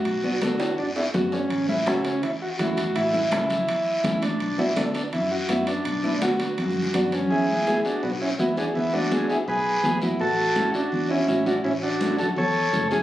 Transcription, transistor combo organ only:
\new Staff \with { instrumentName = "Transistor combo organ" } { \time 4/4 \key a \major \tempo 4 = 166 fis'4 fis'4 d'8 e'8 fis'8 cis'8~ | cis'8 e'8 cis'8 cis'8 e'8 fis'8 fis'4 | e'4 e'2~ e'8 d'8~ | d'8 e'8 d'8 d'8 e'8 fis'8 e'8 d'8~ |
d'4 fis'2~ fis'8 cis'8 | <e' gis'>4. <d' fis'>8 <b fis'>8 <cis' e'>8 <b e'>8 <d' fis'>8 | <b e'>8 <d' fis'>4 <e' gis'>8 <gis' b'>4. r8 | <fis' a'>4. <d' fis'>4 <cis' e'>8 <cis' e'>8 <d' fis'>8 |
<cis' e'>8 <d' fis'>4 <fis' a'>8 <a' cis''>4. r8 | }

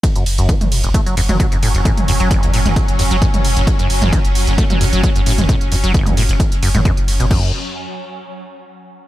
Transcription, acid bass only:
\new Staff \with { instrumentName = "Acid bass" } { \clef bass \time 4/4 \key fis \minor \tempo 4 = 132 r16 fis,16 r16 fis,16 fis16 r8 fis,,16 a16 fis16 eis,16 fis16 fis16 fis,16 a,16 fis,,16 | a,16 r16 eis,16 fis16 fis,,16 eis,16 a,16 fis,,16 r8 eis,16 fis16 fis,16 r8 fis,,16 | r16 fis,16 r16 fis,16 fis16 r8 fis,,16 a16 fis16 eis,16 fis16 r16 fis,16 a,16 fis,,16 | a,16 r16 eis,16 fis16 fis,,16 eis,16 a,16 fis,,16 r8 fis,16 a,16 fis,16 r8 b,16 |
fis,8 r2. r8 | }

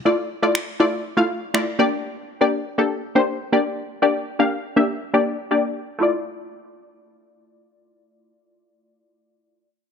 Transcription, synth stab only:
\new Staff \with { instrumentName = "Synth stab" } { \time 4/4 \key d \minor \tempo 4 = 121 <a e' f' d''>8 r16 <a e' f' d''>8 r16 <a e' f' d''>8 r16 <a e' f' f''>8 r16 <a e' f' d''>8 <bes d' g' d''>8~ | <bes d' g' d''>8 r16 <bes d' g' d''>8 r16 <bes d' g' a'>8 r16 <bes d' g' c''>8 r16 <bes d' g' d''>8 r8 | <bes d' g' d''>8 r16 <bes d' g' f''>8 r16 <bes d' g' e''>8 r16 <bes d' g' d''>8 r16 <bes d' g' d''>8 r8 | <a e' f' d''>1~ |
<a e' f' d''>1 | }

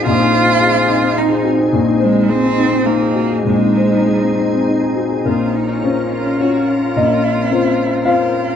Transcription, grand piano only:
\new Staff \with { instrumentName = "Grand piano" } { \time 3/4 \key bes \minor \tempo 4 = 107 << { r2. | r2. | r2. | bes'2 r4 |
ees''2 f''4 | } \\ { <bes,, aes'>16 ees'16 c''16 ees'16 aes'16 c'16 ees'16 c'16 ees'16 aes'16 ges'16 aes'16 | bes,,16 ees'16 c''16 ees'16 aes'16 c'16 ees'16 c'16 ees'16 aes'16 ges'16 aes'16 | bes,,16 ees'16 c''16 ees'16 aes'16 c'16 ees'16 c'16 ees'16 aes'16 ges'16 aes'16 | bes,,4 <des' f' c''>4 <des' f' des''>4 |
bes,,4 <c' f' c''>4 <c' f' c''>4 | } >> }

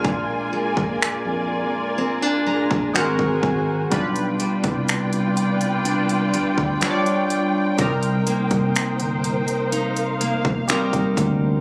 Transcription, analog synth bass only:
\new Staff \with { instrumentName = "Analog synth bass" } { \clef bass \time 4/4 \key g \phrygian \tempo 4 = 62 bes,,8 r16 bes,,16 f,16 f,8 r8. bes,,16 bes,,16 aes,,8 aes,,8 | b,,8 r16 c,4.~ c,16 d,16 d,16 r4 | c,8 r16 c,16 g,,16 g,,8 r8. f,,16 f,,16 r8 d,8 | }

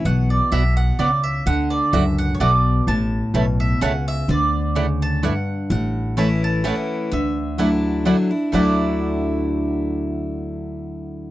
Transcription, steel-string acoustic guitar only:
\new Staff \with { instrumentName = "Steel-string acoustic guitar" } { \clef bass \time 3/4 \key d \major \tempo 4 = 127 << { r2. | r2. | r2. | r2. |
r4 <e a cis' e'>4 <e a cis' e'>4 | r4 <fis a d' e'>4 <fis a d' e'>8 <d' e'>8 | <d fis a d' e'>2.~ | <d fis a d' e'>2. | } \\ { b,4 b,4 cis4 | d4 fis,4 b,4 | a,4 b,4 cis4 | d4 cis4 g,4 |
a,2 r4 | d2 r4 | r2. | r2. | } >> }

